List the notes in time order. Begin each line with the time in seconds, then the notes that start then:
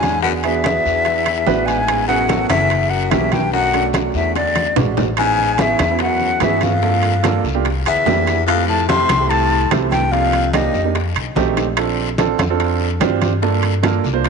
Already playing: E2 G#2 C#4 D4 E4 F#4 G#5
0.03 high bongo, high conga, high timbale, short guiro
0.22 F#2 B3 D4 F#4 G#4 F#5, high bongo, high conga, long guiro
0.43 E2 B3 D4 F#4 G#4 E5, high conga, high timbale
0.64 B3 D4 F#4 G#4, high bongo, high conga, high timbale, low timbale, short guiro
0.86 E2, high bongo, short guiro
1.05 high bongo, high conga, high timbale, long guiro
1.26 high bongo, high conga, high timbale
1.47 A1 B3 D4 F#4 B4, high bongo, low bongo, high conga, low timbale, short guiro
1.66 G#2 G#5, high bongo, high conga, high timbale, short guiro
1.87 B3 C#4 E4 G#4, high bongo, high conga, high timbale, long guiro
2.08 F#2 B3 C#4 E4 G#4 F#5, high conga
2.28 B3 C#4 E4 A4, high bongo, high conga, high timbale, low timbale, short guiro
2.49 F#1 E2 E5, high bongo, high conga, high timbale, short guiro
2.70 high bongo, high conga, high timbale, long guiro
2.90 F#2 F#5, high bongo, high conga
3.11 B1 E2 A#3 C#4 E4 G4 E5, high bongo, low bongo, high conga, high timbale, low timbale, short guiro
3.32 G2 G5, high bongo, high conga, high timbale, short guiro
3.52 F#2 A3 C#4 D4 F#4 F#5, high bongo, high conga, long guiro
3.73 A3 C#4 D4 F#4, high conga, high timbale
3.93 A3 C#4 D4 F#4, high bongo, high conga, high timbale, low timbale, short guiro
4.14 E2 E5, high bongo, short guiro
4.35 D2 D5, high bongo, high conga, high timbale, long guiro
4.55 high bongo, high conga, high timbale
4.76 A1 G#3 C#4 D4 F#4, low bongo, low conga, high timbale, short guiro
4.97 low bongo, low conga, low timbale, short guiro
5.17 G#2 B3 C#4 E4 G#4 G#5, high bongo, high conga, high timbale, long guiro
5.39 high conga
5.58 E2 B3 C#4 E4 G#4 E5, high bongo, high conga, high timbale, low timbale, short guiro
5.79 E2, high bongo, high conga, high timbale, short guiro
5.90 B3 C#4 E4 F#4
5.99 F#5, high bongo, high conga, high timbale, long guiro
6.03 F#2
6.21 high bongo, high conga
6.40 E2 G2 B3 C#4 E4 G#4 E5, high bongo, low bongo, high conga, high timbale, low timbale, short guiro
6.61 F2 F5, high bongo, high conga, high timbale, short guiro
6.82 A#3 D4 F4 A4, high bongo, high conga, long guiro
7.03 high conga, high timbale
7.23 A#3 D4 F4 A4, high bongo, high conga, high timbale, low timbale, short guiro
7.44 C2, high bongo, short guiro
7.55 A#3 D4 F4 G4
7.65 high bongo, high conga, high timbale, long guiro
7.86 D2 E2 E5, high bongo, high conga, high timbale
8.06 F2 A#3 D4 E4 G4, high bongo, low bongo, high conga, low timbale, short guiro
8.27 high bongo, high conga, high timbale, short guiro
8.46 F2 A3 C4 E4 G4 F5, high bongo, high conga, high timbale, long guiro
8.67 A2 A5, high conga
8.88 C3 A3 C4 E4 G4 C6, high bongo, high conga, high timbale, low timbale, short guiro
9.09 C2, high bongo, high conga, high timbale, short guiro
9.20 A3 C4 E4 G4
9.29 A2 A5, high bongo, high conga, high timbale, long guiro
9.51 high bongo, high conga
9.71 C2 A3 C4 E4 G4, high bongo, low bongo, high conga, high timbale, low timbale, short guiro
9.91 G2 G5, high bongo, high conga, high timbale, short guiro
10.11 F2 A#3 D4 D#4 G4 F5, high bongo, high conga, long guiro
10.33 high conga, high timbale
10.53 D#2 A#3 D4 D#4 G4 D#5, high bongo, high conga, high timbale, low timbale, short guiro
10.74 F2, high bongo, short guiro
10.84 A#3 D4 D#4 G4
10.95 high bongo, high conga, high timbale, long guiro
11.15 B1, high bongo, high conga, high timbale
11.35 A#1 A3 C4 D#4 G4, high bongo, high conga, low timbale, short guiro
11.57 low bongo, high conga, high timbale, short guiro
11.77 C4 D4 F4 A4, high bongo, high conga, high timbale, long guiro
11.98 high conga
12.18 C4 D4 F4 A4, high bongo, high conga, high timbale, low timbale, short guiro
12.38 F2, high bongo, high conga, high timbale, short guiro
12.50 C4 D4 F4 A4
12.60 high bongo, high conga, high timbale, long guiro
12.80 high bongo, high conga
13.00 G2 C4 D4 F4 G4, high bongo, low bongo, high conga, high timbale, low timbale, short guiro
13.22 high bongo, high conga, high timbale, short guiro
13.42 A#3 D4 F4 A4, high bongo, high conga, long guiro
13.63 high conga, high timbale
13.83 A#3 D4 F4 A4, high bongo, high conga, high timbale, low timbale, short guiro
14.04 C2, high bongo, short guiro
14.13 A#3 D4 F4 C5
14.24 high bongo, high conga, high timbale, long guiro